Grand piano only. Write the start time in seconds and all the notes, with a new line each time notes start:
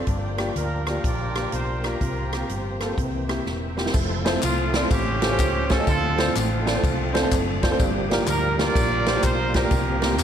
0.07 G2
0.37 A#3 D4 F4 G4
0.87 A#3 D4 F4 G4
1.36 A#3 D4 F4 G4
1.83 A#3 D4 F4 A#4
2.01 C3
2.32 A#3 C4 F4 G4
2.80 A#3 C4 F4 A4
2.99 C3
3.28 A#3 C4 E4 G4
3.77 A#3 C4 E4 G4
4.25 C4 E4 F4 A4 C5
4.74 C4 E4 F4 A4 D5
4.82 C4 E4 F4 A4 C5
4.92 A2
5.22 C#4 F4 G4 A4 C5
5.30 C#4 F4 G4 A4 C5
5.70 C#4 F4 G4 A4 C5
5.78 C#4 F4 G4 A4 D#5
5.87 D3
6.18 C4 D4 F4 A4 C5
6.65 C4 D4 F4 A4 D5
6.74 C4 D4 F4 A4 C5
7.13 C4 D4 F4 A4 C5
7.22 C4 D4 F4 A4 C5
7.62 C4 D4 F4 A4 C5
7.70 C4 D4 F4 A4 C5
7.79 G2
8.10 A#3 D4 F4 G4 A#4
8.59 A#3 D4 F4 G4 A#4
8.67 A#3 D4 F4 G4 A#4
9.06 A#3 D4 F4 G4 C5
9.14 A#3 D4 F4 G4 C5
9.54 A#3 D4 F4 G4 C5
9.63 A#3 D4 F4 G4 A#4
9.72 C3
10.01 A#3 C4 F4 G4 A#4